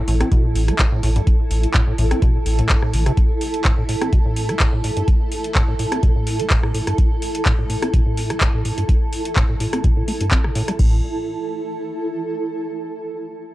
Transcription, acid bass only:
0.08 0.15 A2 medium
0.20 0.30 C4 medium
0.32 0.46 B2 medium
0.44 0.70 A2 medium
0.68 0.74 A3 medium
0.79 0.86 A2 medium
0.92 1.01 A2 medium
1.03 1.10 A2 medium
1.16 1.22 G2 medium
1.74 1.81 A2 loud
1.87 1.93 A2 medium
1.98 2.05 A2 medium
2.11 2.20 C4 medium
2.22 2.36 B2 medium
2.35 2.38 A2 medium
2.59 2.68 A2 medium
2.70 2.77 G2 medium
2.82 2.95 A2 medium
2.93 3.04 E3 medium
3.06 3.12 C3 loud
3.65 3.72 A2 loud
3.78 3.84 A2 medium
3.89 3.96 A2 medium
4.01 4.11 C4 medium
4.13 4.20 B2 medium
4.25 4.51 A2 medium
4.49 4.55 A3 medium
4.60 4.67 A2 medium
4.73 4.82 A2 medium
4.84 4.91 A2 medium
4.97 5.03 G2 medium
5.55 5.62 A2 loud
5.68 5.74 A2 medium
5.79 5.86 A2 medium
5.92 6.01 C4 medium
6.03 6.10 B2 medium
6.16 6.41 A2 medium
6.40 6.46 A3 medium
6.51 6.58 A2 medium
6.63 6.73 A2 medium
6.74 6.81 A2 medium
6.87 6.93 G2 medium
7.46 7.53 A2 loud
7.59 7.65 A2 medium
7.70 7.77 A2 medium
7.82 7.92 C4 medium
7.94 8.01 B2 medium
8.06 8.32 A2 medium
8.30 8.36 A3 medium
8.41 8.48 A2 medium
8.54 8.63 A2 medium
8.65 8.72 A2 medium
8.78 8.84 G2 medium
9.36 9.43 A2 loud
9.49 9.55 A2 medium
9.60 9.67 A2 medium
9.73 9.82 C4 medium
9.84 9.91 B2 medium
9.97 10.03 A2 medium
10.08 10.12 A3 medium
10.21 10.30 G2 medium
10.32 10.46 C4 medium
10.44 10.50 A2 medium
10.55 10.62 A2 loud
10.68 10.72 G3 medium
10.79 11.01 A2 medium

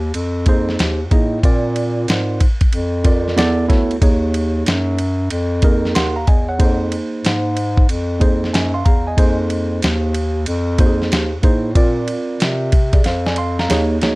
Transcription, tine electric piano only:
0.47 0.98 A#3 medium
0.47 0.99 D#4 medium
0.47 0.99 G#4 medium
0.47 0.99 C5 loud
1.11 1.37 A#3 medium
1.11 1.38 D#4 medium
1.11 1.38 G#4 medium
1.11 1.38 D#5 medium
1.43 2.38 C4 medium
1.43 2.39 F4 medium
1.43 2.39 A#4 medium
1.43 2.39 D5 medium
3.04 3.37 C4 medium
3.04 3.37 F4 medium
3.04 3.37 A#4 medium
3.04 3.37 D5 medium
3.36 3.64 B3 medium
3.36 3.65 E4 medium
3.36 3.65 A4 medium
3.36 3.65 D5 loud
3.68 3.95 B3 medium
3.68 3.95 E4 medium
3.68 3.95 A4 medium
3.68 3.96 C#5 medium
4.01 4.97 A#3 medium
4.01 4.97 D#4 medium
4.01 4.97 G#4 medium
4.01 4.97 C#5 medium
5.63 6.14 A#3 medium
5.63 6.15 D#4 medium
5.63 6.15 G#4 medium
5.63 6.15 A#4 loud
5.95 6.15 F#5 medium
5.95 6.15 C6 medium
6.16 6.27 F5 medium
6.16 6.27 A#5 medium
6.28 6.48 D#5 medium
6.28 6.47 G#5 medium
6.49 6.79 C#5 medium
6.49 6.79 F#5 medium
6.59 7.54 A#3 medium
6.59 7.54 D#4 medium
6.59 7.55 G#4 medium
6.59 7.55 C5 loud
8.20 8.72 A#3 medium
8.20 8.72 D#4 medium
8.20 8.72 G#4 medium
8.20 8.73 C5 medium
8.53 8.73 D#5 medium
8.53 8.73 G#5 medium
8.74 8.84 F5 medium
8.74 8.85 C6 medium
8.85 9.05 F5 medium
8.85 9.05 A#5 medium
9.07 9.38 D#5 medium
9.07 9.37 G#5 medium
9.17 10.12 A#3 medium
9.17 10.13 D#4 medium
9.17 10.13 G#4 medium
9.17 10.13 C5 loud
10.78 11.30 A#3 medium
10.78 11.31 D#4 medium
10.78 10.88 F#4 medium
10.78 11.31 C5 medium
10.86 11.34 G#4 medium
11.43 11.69 A#3 medium
11.43 11.70 D#4 medium
11.43 11.70 G#4 medium
11.43 11.70 C5 medium
11.75 12.71 C4 medium
11.75 12.71 F4 medium
11.75 12.71 A#4 medium
11.75 12.71 D5 medium
12.94 13.05 G#4 medium
12.94 13.04 D5 medium
13.06 13.25 C5 medium
13.06 13.25 F5 medium
13.26 13.37 D5 medium
13.26 13.37 G#5 medium
13.38 13.58 F5 medium
13.38 13.57 C6 medium
13.59 13.90 F5 medium
13.59 13.89 A#5 medium
13.69 13.97 A#3 loud
13.69 13.97 D#4 medium
13.69 13.98 G#4 medium
13.69 13.98 C#5 loud
14.02 14.15 A#3 medium
14.02 14.15 D#4 medium
14.02 14.15 G#4 medium
14.02 14.15 C#5 medium

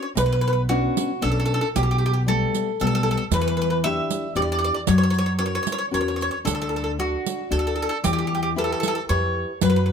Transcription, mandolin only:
0.03 0.09 C#5 medium
0.18 0.24 B4 medium
0.26 0.31 B4 medium
0.33 0.39 B4 medium
0.41 0.46 B4 medium
0.48 0.51 B4 medium
0.53 0.60 B4 soft
0.69 1.24 F#4 medium
1.22 1.29 A4 medium
1.32 1.38 A4 medium
1.40 1.44 A4 medium
1.46 1.52 A4 medium
1.54 1.60 A4 medium
1.61 1.68 A4 medium
1.76 1.82 G4 medium
1.83 1.90 G4 medium
1.91 1.97 G4 medium
1.98 2.05 G4 soft
2.06 2.12 G4 medium
2.13 2.21 G4 soft
2.28 2.80 A4 medium
2.81 2.86 A4 medium
2.87 2.94 A4 medium
2.95 3.02 A4 medium
3.03 3.10 A4 medium
3.11 3.16 A4 medium
3.17 3.24 A4 medium
3.34 3.40 B4 medium
3.42 3.46 B4 medium
3.48 3.54 B4 medium
3.57 3.60 B4 medium
3.62 3.68 B4 medium
3.70 3.76 B4 medium
3.84 4.32 E5 loud
4.36 4.41 D5 medium
4.42 4.49 D5 medium
4.52 4.57 D5 medium
4.59 4.63 D5 medium
4.64 4.72 D5 medium
4.74 4.80 D5 medium
4.88 4.95 C#5 medium
4.98 5.02 C#5 medium
5.03 5.09 C#5 medium
5.10 5.17 C#5 medium
5.18 5.25 C#5 medium
5.26 5.32 C#5 medium
5.39 5.45 C#5 medium
5.46 5.54 C#5 medium
5.55 5.62 C#5 medium
5.63 5.70 C#5 medium
5.72 5.77 C#5 medium
5.79 5.85 C#5 medium
5.94 5.99 C#5 medium
6.01 6.07 C#5 medium
6.08 6.15 C#5 medium
6.16 6.21 C#5 medium
6.22 6.30 C#5 medium
6.31 6.38 C#5 medium
6.45 6.53 A4 medium
6.55 6.60 A4 medium
6.62 6.68 A4 medium
6.69 6.75 A4 medium
6.76 6.83 A4 medium
6.84 6.91 A4 soft
7.00 7.48 F#4 medium
7.52 7.58 A4 medium
7.59 7.66 A4 medium
7.67 7.75 A4 medium
7.76 7.81 A4 medium
7.82 7.88 A4 medium
7.89 7.97 A4 medium
8.04 8.11 G4 medium
8.13 8.17 G4 medium
8.19 8.26 G4 medium
8.27 8.33 G4 medium
8.35 8.41 G4 medium
8.43 8.49 G4 medium
8.58 8.63 A4 medium
8.64 8.71 A4 medium
8.72 8.79 A4 medium
8.80 8.87 A4 medium
8.88 8.94 A4 medium
8.95 9.01 A4 medium
9.09 9.58 C#5 medium
9.63 9.68 B4 medium
9.70 9.75 B4 medium
9.76 9.83 B4 medium
9.86 9.92 B4 soft

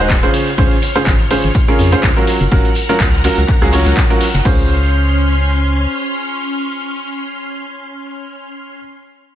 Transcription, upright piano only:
0.00 0.14 G#3 loud
0.00 0.14 D#4 medium
0.00 0.13 F#4 loud
0.00 0.14 G#4 medium
0.00 0.14 C5 loud
0.23 0.48 C#3 medium
0.23 0.48 C#4 medium
0.23 0.48 F4 medium
0.23 0.48 G#4 medium
0.23 0.48 C5 loud
0.58 0.74 C#3 loud
0.58 0.75 C#4 medium
0.58 0.75 F4 medium
0.58 0.75 G#4 medium
0.58 0.75 C5 loud
0.96 1.10 C#3 loud
0.96 1.10 C#4 medium
0.96 1.10 F4 medium
0.96 1.10 G#4 medium
0.96 1.10 C5 loud
1.31 1.47 C#3 medium
1.31 1.47 C#4 medium
1.31 1.47 F4 medium
1.31 1.47 G#4 medium
1.31 1.47 C5 loud
1.68 1.88 C#3 loud
1.68 1.88 C#4 medium
1.68 1.88 F4 medium
1.68 1.88 G#4 medium
1.68 1.88 A#4 loud
1.92 2.07 C#3 loud
1.92 2.07 C#4 medium
1.92 2.07 F4 medium
1.92 2.07 G#4 medium
1.92 2.07 C5 loud
2.17 2.41 F#3 medium
2.17 2.41 C#4 medium
2.17 2.41 F4 medium
2.17 2.41 F#4 medium
2.17 2.41 A#4 loud
2.52 2.68 F#3 medium
2.52 2.68 C#4 medium
2.52 2.68 F4 medium
2.52 2.68 F#4 medium
2.52 2.68 A#4 loud
2.89 3.04 F#3 medium
2.89 3.04 C#4 medium
2.89 3.04 F4 medium
2.89 3.04 F#4 medium
2.89 3.04 A#4 loud
3.24 3.41 F#3 medium
3.24 3.41 C#4 medium
3.24 3.41 F4 medium
3.24 3.41 F#4 medium
3.24 3.41 A#4 loud
3.62 3.70 F#3 loud
3.62 3.70 C#4 medium
3.62 3.70 F4 medium
3.62 3.70 F#4 medium
3.62 3.70 G#4 loud
3.73 3.98 F#3 medium
3.73 3.98 C#4 medium
3.73 3.98 F4 medium
3.73 3.98 F#4 medium
3.73 3.98 C#5 medium
4.10 4.25 F#3 medium
4.10 4.25 C#4 medium
4.10 4.25 F4 medium
4.10 4.25 F#4 medium
4.10 4.25 A#4 medium
4.45 8.78 C#4 medium
4.45 8.78 F4 medium
4.45 8.77 G#4 medium
4.45 8.78 C5 loud

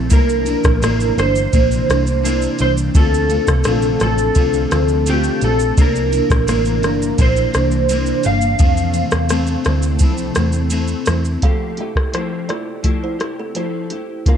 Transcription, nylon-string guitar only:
0.00 0.10 A3 soft
0.00 0.10 C4 soft
0.00 0.10 E4 medium
0.09 0.46 C3 medium
0.09 0.47 A#3 medium
0.09 0.46 D4 medium
0.09 0.44 E4 medium
0.46 0.81 A#3 soft
0.46 0.81 D4 medium
0.46 0.82 E4 medium
0.81 1.17 C3 medium
0.81 1.17 A#3 medium
0.81 1.17 D4 medium
0.81 1.15 E4 medium
1.16 1.52 A#3 soft
1.16 1.53 D4 soft
1.16 1.52 E4 medium
1.52 1.88 C3 medium
1.52 1.89 A#3 medium
1.52 1.89 D4 medium
1.52 1.87 E4 medium
1.89 2.23 A#3 soft
1.89 2.23 D4 medium
1.89 2.24 E4 medium
2.23 2.59 C3 medium
2.23 2.59 A#3 medium
2.23 2.59 D4 loud
2.23 2.58 E4 medium
2.59 2.95 A#3 soft
2.59 2.95 D4 soft
2.59 2.94 E4 medium
2.95 3.30 D3 medium
2.95 3.30 A3 medium
2.95 3.31 C4 medium
2.95 3.29 F4 medium
3.30 3.65 A3 soft
3.30 3.66 C4 medium
3.30 3.66 F4 medium
3.66 4.01 D3 medium
3.66 4.01 A3 medium
3.66 4.01 C4 medium
3.66 3.99 F4 loud
4.00 4.36 A3 soft
4.00 4.37 C4 soft
4.00 4.36 F4 medium
4.36 4.71 D3 medium
4.36 4.72 A3 medium
4.36 4.72 C4 medium
4.36 4.70 F4 medium
4.72 5.07 A3 soft
4.72 5.07 C4 medium
4.72 5.07 F4 medium
5.07 5.42 D3 medium
5.07 5.42 A3 medium
5.07 5.43 C4 medium
5.07 5.41 F4 medium
5.42 5.78 A3 soft
5.42 5.78 C4 medium
5.42 5.77 F4 medium
5.77 6.13 C3 medium
5.77 6.13 A#3 medium
5.77 6.12 D4 medium
5.77 6.11 E4 medium
6.12 6.47 A#3 soft
6.12 6.47 D4 medium
6.12 6.48 E4 medium
6.47 6.83 C3 medium
6.47 6.83 A#3 medium
6.47 6.82 D4 medium
6.47 6.80 E4 medium
6.82 7.18 A#3 medium
6.82 7.19 D4 medium
6.82 7.18 E4 medium
7.18 7.53 C3 medium
7.18 7.54 A#3 medium
7.18 7.54 D4 medium
7.18 7.52 E4 medium
7.53 7.89 A#3 medium
7.53 7.89 D4 medium
7.53 7.89 E4 medium
7.89 8.24 C3 medium
7.89 8.25 A#3 medium
7.89 8.24 D4 medium
7.89 8.25 E4 medium
8.25 8.60 A#3 soft
8.25 8.60 D4 soft
8.59 8.95 F3 medium
8.59 8.95 A3 medium
8.59 8.95 C4 medium
8.96 9.30 A3 soft
8.96 9.30 C4 medium
9.31 9.66 A3 loud
9.31 9.65 C4 medium
9.65 10.00 A3 soft
9.65 10.01 C4 medium
9.65 10.01 E4 medium
10.00 10.36 F3 medium
10.00 10.37 A3 medium
10.00 10.36 C4 medium
10.00 10.35 E4 medium
10.36 10.70 A3 medium
10.36 10.71 C4 medium
10.36 10.72 E4 medium
10.72 11.07 A3 medium
10.72 11.07 C4 medium
10.72 11.06 E4 medium
11.07 11.42 A3 medium
11.07 11.43 C4 medium
11.07 11.42 E4 medium
11.43 11.78 F3 medium
11.43 11.78 A3 medium
11.43 11.77 G4 medium
11.78 12.13 A3 soft
11.78 12.13 E4 medium
11.78 12.13 G4 medium
12.13 12.48 F3 medium
12.13 12.49 A3 medium
12.13 12.48 E4 medium
12.13 12.47 G4 medium
12.48 12.83 A3 soft
12.48 12.83 E4 soft
12.48 12.84 G4 soft
12.83 13.19 F3 medium
12.83 13.19 A3 medium
12.83 13.19 E4 medium
12.83 13.17 G4 medium
13.19 13.54 A3 soft
13.19 13.55 E4 medium
13.19 13.54 G4 medium
13.55 13.90 F3 medium
13.55 13.90 A3 medium
13.55 13.91 E4 medium
13.55 13.89 G4 medium
13.90 14.25 A3 soft
13.90 14.26 E4 soft
13.90 14.26 G4 soft
14.26 14.37 C#3 medium
14.26 14.37 A#3 medium
14.26 14.37 D#4 medium
14.26 14.37 F4 medium

